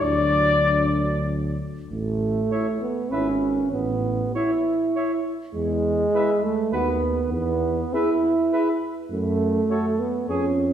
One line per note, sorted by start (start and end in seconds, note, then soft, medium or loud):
0.02 1.56 D2 medium
0.02 1.57 F#3 medium
0.02 1.60 D4 medium
0.02 1.26 D5 medium
0.02 1.29 D5 medium
1.91 2.41 A1 medium
1.91 2.78 A3 medium
2.51 2.68 E4 soft
2.51 2.67 C#5 medium
2.51 2.68 E5 soft
2.81 3.13 B3 medium
3.11 3.62 G#1 medium
3.11 3.71 C#4 medium
3.11 3.28 E4 soft
3.11 3.27 B4 soft
3.11 3.28 E5 soft
3.72 4.25 A1 medium
3.72 4.34 B3 medium
4.35 5.24 E4 medium
4.35 4.52 E4 medium
4.35 4.51 C#5 medium
4.35 4.52 E5 soft
4.96 5.12 E4 soft
4.96 5.12 C#5 medium
4.96 5.13 E5 soft
5.55 6.04 E2 medium
5.55 6.46 G#3 medium
6.14 6.30 E4 medium
6.14 6.31 B4 medium
6.14 6.31 E5 medium
6.44 6.75 A3 medium
6.72 7.22 D#2 medium
6.72 7.32 B3 medium
6.72 6.89 F#4 soft
6.72 6.88 B4 medium
6.72 6.90 F#5 medium
7.32 7.83 E2 medium
7.32 7.95 B3 medium
7.94 8.82 E4 medium
7.94 8.10 G#4 medium
7.94 8.10 B4 medium
7.94 8.10 E5 medium
8.53 8.70 G#4 medium
8.53 8.69 B4 medium
8.53 8.69 E5 medium
9.11 9.60 F#2 medium
9.11 10.01 A3 medium
9.70 9.87 F#4 soft
9.70 9.86 A4 soft
9.70 9.86 C#5 medium
9.99 10.29 B3 medium
10.28 10.73 F2 medium
10.28 10.73 C#4 medium
10.28 10.45 G#4 soft
10.28 10.45 G#4 medium
10.28 10.45 C#5 soft